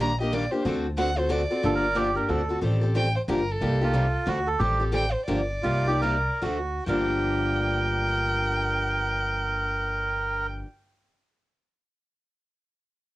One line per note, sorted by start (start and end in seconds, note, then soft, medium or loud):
0.00 0.45 A#1 medium
0.00 0.11 D#3 medium
0.00 0.10 G3 medium
0.00 0.11 A#3 medium
0.00 0.11 D4 medium
0.00 0.11 G4 medium
0.00 0.19 A#5 medium
0.20 0.32 A#3 soft
0.20 0.32 D4 medium
0.20 0.32 G4 medium
0.20 0.35 D#5 medium
0.32 0.43 D#3 medium
0.32 0.43 G3 medium
0.32 0.43 A#3 medium
0.32 0.43 D4 medium
0.32 0.43 G4 medium
0.32 0.53 D5 medium
0.51 0.65 A#3 soft
0.51 0.64 D4 soft
0.51 0.64 G4 medium
0.51 0.64 C5 medium
0.65 1.44 D2 medium
0.65 0.85 D3 medium
0.65 0.85 A3 medium
0.65 0.86 C4 medium
0.65 0.86 F#4 medium
0.65 0.86 A4 medium
0.97 1.08 D3 medium
0.97 1.09 A3 medium
0.97 1.09 C4 medium
0.97 1.09 F#4 medium
0.97 1.09 A4 medium
0.97 1.20 F#5 medium
1.17 1.28 C4 soft
1.17 1.29 F#4 soft
1.17 1.29 A4 medium
1.17 1.33 C5 medium
1.29 1.41 D3 medium
1.29 1.41 A3 medium
1.29 1.41 C4 medium
1.29 1.41 F#4 medium
1.29 1.41 A4 medium
1.29 2.30 D5 medium
1.51 1.63 C4 soft
1.51 1.63 F#4 soft
1.51 1.63 A4 soft
1.63 2.17 G1 medium
1.63 1.84 D3 medium
1.63 1.84 F3 medium
1.63 1.84 A#3 medium
1.63 1.84 D4 medium
1.63 1.85 G4 medium
1.63 1.75 A4 medium
1.75 1.98 A#4 medium
1.95 2.07 D3 medium
1.95 2.07 F3 medium
1.95 2.07 A#3 medium
1.95 2.07 D4 medium
1.95 2.15 G4 medium
1.95 2.08 G4 medium
2.15 2.29 A#3 soft
2.15 2.29 D4 soft
2.15 2.28 G4 medium
2.15 2.30 A#4 medium
2.28 2.56 D2 medium
2.28 2.40 D3 medium
2.28 2.40 A3 medium
2.28 2.41 C4 medium
2.28 2.41 F#4 medium
2.28 2.60 A4 medium
2.28 2.41 A4 medium
2.49 2.61 C4 soft
2.49 2.62 F#4 soft
2.49 2.61 A4 soft
2.61 3.15 A1 medium
2.61 2.81 D#3 medium
2.61 2.82 G3 medium
2.61 2.82 C4 medium
2.61 2.82 G4 medium
2.61 2.80 A4 medium
2.81 2.94 C4 soft
2.81 2.95 G4 medium
2.81 2.94 A4 medium
2.95 3.06 D#3 medium
2.95 3.06 G3 medium
2.95 3.06 C4 medium
2.95 3.07 G4 medium
2.95 3.07 A4 medium
2.95 3.15 G5 medium
3.16 3.22 C5 medium
3.28 3.55 G1 medium
3.28 3.39 D3 medium
3.28 3.40 F3 medium
3.28 3.40 A#3 medium
3.28 3.40 D4 medium
3.28 3.40 G4 medium
3.28 3.53 A#4 medium
3.51 4.16 A4 medium
3.61 4.14 C2 medium
3.61 3.81 C3 medium
3.61 3.81 G3 medium
3.61 3.81 A#3 medium
3.61 3.81 D#4 medium
3.61 3.80 G4 medium
3.82 3.93 A#3 soft
3.82 3.93 D#4 soft
3.82 4.30 F4 medium
3.82 3.94 G4 medium
3.94 4.05 C3 medium
3.94 4.05 G3 medium
3.94 4.05 A#3 medium
3.94 4.05 D#4 medium
3.94 4.06 G4 medium
4.26 4.53 D2 medium
4.26 4.38 D3 medium
4.26 4.38 A3 medium
4.26 4.38 C4 medium
4.26 4.38 F#4 medium
4.26 4.48 F#4 medium
4.26 4.38 A4 medium
4.47 4.61 A4 medium
4.59 5.14 A1 medium
4.59 4.80 D#3 medium
4.59 4.80 G3 medium
4.59 4.80 C4 medium
4.59 4.85 G4 medium
4.59 4.80 G4 medium
4.59 4.79 A4 medium
4.80 4.92 C4 soft
4.80 4.92 G4 soft
4.80 4.92 A4 medium
4.92 5.04 D#3 medium
4.92 5.05 G3 medium
4.92 5.05 C4 medium
4.92 5.05 G4 medium
4.92 5.05 A4 medium
4.92 5.14 G5 medium
5.12 5.26 C5 medium
5.26 5.57 G1 medium
5.26 5.40 D3 medium
5.26 5.40 F3 medium
5.26 5.40 A#3 medium
5.26 5.40 D4 medium
5.26 5.40 G4 medium
5.26 6.38 D5 medium
5.63 6.27 C2 medium
5.63 5.85 C3 medium
5.63 5.86 G3 medium
5.63 5.86 A#3 medium
5.63 5.86 D#4 medium
5.63 5.87 F4 medium
5.63 5.86 G4 medium
5.87 6.01 A#3 soft
5.87 6.01 D#4 medium
5.87 6.01 G4 medium
6.01 6.15 C3 medium
6.01 6.15 G3 medium
6.01 6.15 A#3 medium
6.01 6.15 D#4 medium
6.01 6.15 G4 medium
6.01 6.43 A#4 medium
6.41 6.78 D2 medium
6.41 6.56 D3 medium
6.41 6.57 A3 medium
6.41 6.57 C4 medium
6.41 6.84 F#4 medium
6.41 6.57 F#4 medium
6.41 6.57 A4 medium
6.86 10.61 G1 medium
6.86 10.64 G2 medium
6.86 10.65 D3 medium
6.86 10.66 F3 medium
6.86 10.66 A#3 medium
6.86 10.67 D4 medium
6.86 10.67 G4 medium
6.86 10.47 A#4 medium
6.86 10.47 G5 medium